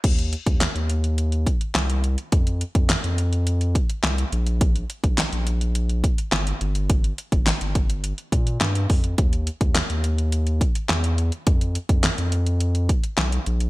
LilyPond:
<<
  \new Staff \with { instrumentName = "Sub bass" } { \clef bass \time 4/4 \key g \phrygian \tempo 4 = 105 ees,8. ees,8 ees,4.~ ees,16 c,4 | f,8. f,8 f,4.~ f,16 c,8 bes,,8~ | bes,,8. bes,,8 bes,,4.~ bes,,16 g,,8 g,,8~ | g,,8. g,,8 g,,4~ g,,16 bes,8 g,8 f,8 |
ees,8. ees,8 ees,4.~ ees,16 fes,4 | f,8. f,8 f,4.~ f,16 ces,8 bes,,8 | }
  \new DrumStaff \with { instrumentName = "Drums" } \drummode { \time 4/4 <cymc hh bd>16 hh16 hh16 <hh bd>16 <hc hh sn>16 hh16 hh16 hh16 hh16 hh16 <hh bd>16 hh16 <hc hh sn>16 hh16 hh16 hh16 | <hh bd>16 hh16 hh16 <hh bd>16 <hc hh sn>16 hh16 hh16 hh16 hh16 hh16 <hh bd>16 hh16 <hc hh sn>16 hh16 hh16 hh16 | <hh bd>16 hh16 hh16 <hh bd>16 <hc hh sn>16 hh16 hh16 hh16 hh16 hh16 <hh bd>16 hh16 <hc hh sn>16 hh16 hh16 hh16 | <hh bd>16 hh16 hh16 <hh bd>16 <hc hh sn>16 hh16 <hh bd>16 hh16 hh16 hh16 <hh bd>16 hh16 <hc hh sn>16 hh16 <hho bd>16 hh16 |
<hh bd>16 hh16 hh16 <hh bd>16 <hc hh sn>16 hh16 hh16 hh16 hh16 hh16 <hh bd>16 hh16 <hc hh sn>16 hh16 hh16 hh16 | <hh bd>16 hh16 hh16 <hh bd>16 <hc hh sn>16 hh16 hh16 hh16 hh16 hh16 <hh bd>16 hh16 <hc hh sn>16 hh16 hh16 hh16 | }
>>